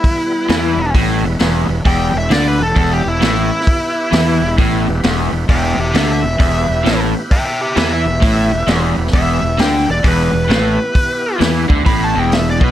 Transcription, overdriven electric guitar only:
X:1
M:4/4
L:1/8
Q:"Swing" 1/4=132
K:Em
V:1 name="Overdriven electric guitar" clef=bass
z2 E, E,, A,, E,, E,, E,, | E,, E,, D, E,, E,, E,, A,, z | z2 E, E,, A,, E,, E,, E,, | E,, E,, D, E,, E,, E,, A,, z |
z2 E, E,, A,, E,, E,, E,, | E,, E,, D, E,, E,, E,, A,, z | z2 E, D, A,, E,,2 B,, |]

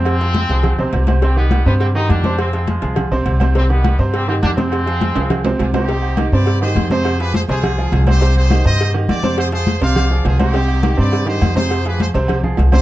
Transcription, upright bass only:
X:1
M:4/4
L:1/8
Q:1/4=206
K:Fdor
V:1 name="Upright bass" clef=bass
F,,3 C,,2 =B,,, C,,2- | C,,3 G,,3 F,,2- | F,,3 C,,2 =B,,, C,,2- | C,,3 G,,3 F,,2- |
F,,3 C,,3 C,,2- | [K:Cm] C,,3 G,,3 F,,2- | F,,3 C,,3 C,,2- | C,,3 G,,3 F,,2- |
F,,3 C,,3 C,,2- | C,,3 G,,3 F,,2- | F,,3 C,,3 C,,2 |]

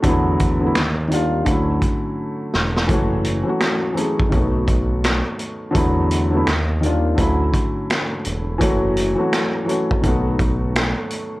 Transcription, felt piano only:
X:1
M:4/4
L:1/16
Q:"Swing 16ths" 1/4=84
K:F#m
V:1 name="Felt piano"
[D,F,A,B,E]3 [D,F,A,B,E] z2 [^D,=G,^A,=D^E]2 [=D,F,=A,C=E]6- [D,F,A,CE] z | [E,F,A,CF]3 [E,F,A,CF]3 [E,F,A,CG]2 [^D,F,A,B,F]6- [D,F,A,B,F] z | [D,F,A,B,E]3 [D,F,A,B,E] z2 [^D,=G,^A,=D^E]2 [=D,F,=A,C=E]6- [D,F,A,CE] z | [E,F,A,CF]3 [E,F,A,CF]3 [E,F,A,CF]2 [^D,F,A,B,F]6- [D,F,A,B,F] z |]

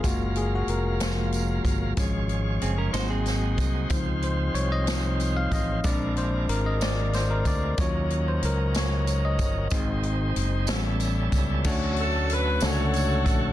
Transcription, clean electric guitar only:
X:1
M:6/8
L:1/16
Q:3/8=62
K:Db
V:1 name="Clean electric guitar"
z12 | z4 [CA] [DB] [Ec] [CA]4- [CA] | z12 | z12 |
z12 | z12 | [K:D] z12 |]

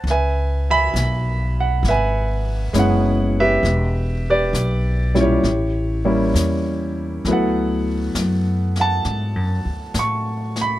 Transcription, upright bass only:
X:1
M:4/4
L:1/8
Q:"Swing" 1/4=67
K:C#phr
V:1 name="Upright bass" clef=bass
C,,2 B,,,2 G,,,2 F,,,2 | E,,,2 B,,,2 A,,,2 E,,2 | D,,2 F,,2 (3G,, F,, D,, A,,2 |]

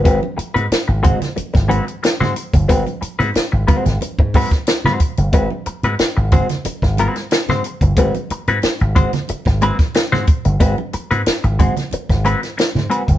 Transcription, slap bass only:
X:1
M:4/4
L:1/16
Q:1/4=91
K:Abmix
V:1 name="Slap bass" clef=bass
A,,, z2 A,, z A,,,2 z2 A,,,2 z2 A,, z =G,,, | A,,, z2 A,, z A,,, z A,,, z A,,2 z2 A,, z =G,,, | A,,, z2 A,, z A,,,2 z2 A,,,2 z2 A,, z =G,,, | A,,, z2 A,, z A,,,2 z2 A,,,2 z2 A,, z =G,,, |
A,,, z2 A,, z A,,,2 z2 A,,,2 z2 A,, z =G,,, |]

